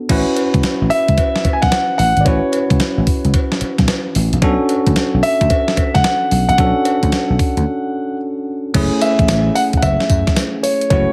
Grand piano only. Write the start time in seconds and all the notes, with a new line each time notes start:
0.90 E5
1.53 G#5
1.62 F#5
1.98 F#5
2.21 D5
2.25 C#5
5.23 E5
5.94 F#5
6.49 F#5
9.02 E5
9.55 F#5
9.77 F#5
9.82 E5
10.63 C#5
10.90 C#5